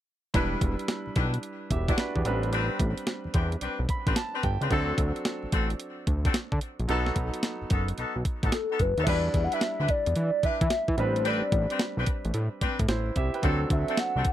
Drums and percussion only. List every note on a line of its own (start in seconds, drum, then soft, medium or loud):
0.34 kick loud
0.34 closed hi-hat medium
0.61 kick loud
0.61 closed hi-hat medium
0.79 closed hi-hat medium
0.88 snare loud
0.88 closed hi-hat medium
1.16 kick loud
1.16 closed hi-hat medium
1.34 closed hi-hat medium
1.43 closed hi-hat medium
1.71 kick medium
1.71 closed hi-hat medium
1.88 kick medium
1.88 closed hi-hat medium
1.98 snare loud
1.98 closed hi-hat medium
2.16 kick medium
2.25 closed hi-hat medium
2.43 closed hi-hat soft
2.53 closed hi-hat medium
2.80 kick loud
2.80 closed hi-hat medium
2.98 closed hi-hat medium
3.07 snare medium
3.07 closed hi-hat medium
3.34 kick loud
3.34 closed hi-hat medium
3.52 closed hi-hat medium
3.61 closed hi-hat medium
3.89 kick medium
3.89 closed hi-hat medium
4.07 kick medium
4.07 closed hi-hat medium
4.16 snare loud
4.16 closed hi-hat medium
4.43 kick medium
4.43 closed hi-hat medium
4.62 closed hi-hat soft
4.71 kick loud
4.71 closed hi-hat medium
4.98 kick loud
4.98 closed hi-hat medium
5.16 closed hi-hat medium
5.25 snare loud
5.25 closed hi-hat medium
5.52 kick loud
5.52 closed hi-hat medium
5.70 closed hi-hat medium
5.80 closed hi-hat medium
6.07 kick medium
6.07 closed hi-hat medium
6.25 kick loud
6.25 closed hi-hat medium
6.34 snare loud
6.34 closed hi-hat medium
6.52 kick medium
6.61 closed hi-hat medium
6.80 closed hi-hat soft
6.89 closed hi-hat medium
7.06 snare medium
7.16 kick medium
7.16 closed hi-hat medium
7.34 closed hi-hat medium
7.43 snare loud
7.43 closed hi-hat medium
7.70 kick loud
7.70 closed hi-hat medium
7.88 closed hi-hat medium
7.98 closed hi-hat medium
8.25 kick medium
8.25 closed hi-hat medium
8.43 kick medium
8.43 closed hi-hat medium
8.52 snare loud
8.52 closed hi-hat medium
8.79 kick medium
8.79 closed hi-hat medium
8.98 closed hi-hat medium
9.07 kick loud
9.07 closed hi-hat medium
9.07 crash medium
9.34 kick loud
9.34 closed hi-hat medium
9.52 closed hi-hat medium
9.61 snare loud
9.61 closed hi-hat medium
9.88 kick medium
9.88 closed hi-hat medium
10.06 closed hi-hat medium
10.16 closed hi-hat medium
10.43 kick medium
10.43 closed hi-hat medium
10.61 kick loud
10.61 closed hi-hat medium
10.70 snare loud
10.70 closed hi-hat medium
10.88 kick medium
10.98 closed hi-hat medium
11.16 closed hi-hat soft
11.25 closed hi-hat medium
11.52 kick loud
11.52 closed hi-hat medium
11.70 closed hi-hat medium
11.79 snare loud
11.79 closed hi-hat medium
12.06 kick loud
12.06 closed hi-hat medium
12.25 closed hi-hat medium
12.34 closed hi-hat medium
12.61 kick medium
12.61 closed hi-hat medium
12.79 kick medium
12.79 closed hi-hat medium
12.89 snare loud
12.89 closed hi-hat medium
13.16 kick medium
13.16 closed hi-hat medium
13.34 closed hi-hat soft
13.43 kick loud
13.43 closed hi-hat medium
13.70 kick loud
13.70 closed hi-hat medium
13.88 closed hi-hat medium
13.97 snare loud
13.97 closed hi-hat medium
14.25 kick loud
14.25 closed hi-hat medium